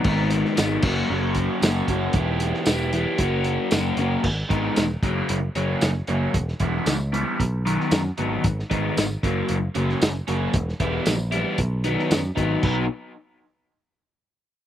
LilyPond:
<<
  \new Staff \with { instrumentName = "Overdriven electric guitar" } { \time 4/4 \key b \major \tempo 4 = 114 <gis, dis gis b dis'>4 <gis, dis gis b dis'>8 <fis ais cis' fis'>8 <fis ais cis' fis'>4 <fis ais cis' fis'>8 <fis ais cis' fis'>8 | <e b e' g'>4 <e b e' g'>8 <e b e' g'>8 <fis ais cis' fis'>4 <fis ais cis' fis'>8 <fis ais cis' fis'>8 | r8 <dis gis b dis'>8 r8 <cis fis ais cis'>8 r8 <cis fis ais cis'>8 r8 <cis fis ais cis'>8 | r8 <e g b e'>8 r8 <e g b e'>8 r8 <dis fis b dis'>8 r8 <dis fis b dis'>8 |
r8 <dis gis b dis'>8 r8 <cis fis ais cis'>8 r8 <cis fis ais cis'>8 r8 <cis fis ais cis'>8 | r8 <e g b e'>8 r8 <e g b e'>8 r8 <dis fis b dis'>8 r8 <dis fis b dis'>8 | <b, fis b dis'>8 r2. r8 | }
  \new Staff \with { instrumentName = "Picked electric bass" } { \clef bass \time 4/4 \key b \major gis,,4 gis,,8 fis,,8 fis,,4 fis,,8 fis,,8 | e,,4 e,,4 fis,,4 fis,,8 fis,,8 | gis,,8 gis,,8 e,,8 fis,,8 fis,,8 fis,,8 fis,,8 fis,,8 | e,,8 e,,8 cis,4 b,,4 fis,8 gis,,8 |
gis,,8 gis,,8 gis,,8 fis,,8 fis,,8 fis,,8 fis,,8 fis,,8 | e,,8 e,,8 ais,,4 b,,4 fis,8 gis,,8 | b,,8 r2. r8 | }
  \new DrumStaff \with { instrumentName = "Drums" } \drummode { \time 4/4 <cymc bd>8 hh16 sn16 <hh sn tamb>8 <cymc bd>8 r8 <hh bd>8 <hh sn tamb>8 <hh bd>8 | <hh bd>8 hh16 sn16 <hh sn tamb>8 hh8 <hh bd>8 hh8 <hh sn tamb>8 hh8 | <cymc bd>8 <hh bd>8 <hh sn tamb>8 <hh bd>8 hh8 hh8 <hh sn tamb>8 hh8 | <hh bd>16 sn16 <hh bd>8 <hh sn tamb>8 hh8 <hh bd>8 hh16 sn16 <hh sn tamb>8 hh8 |
<hh bd>16 sn16 <hh bd>8 <hh sn tamb>8 <hh bd>8 hh8 hh16 sn16 <hh sn tamb>8 hh8 | <hh bd>16 sn16 <hh bd>8 <hh sn tamb>8 hh8 <hh bd>8 hh16 sn16 <hh sn tamb>8 <hh bd>8 | <cymc bd>4 r4 r4 r4 | }
>>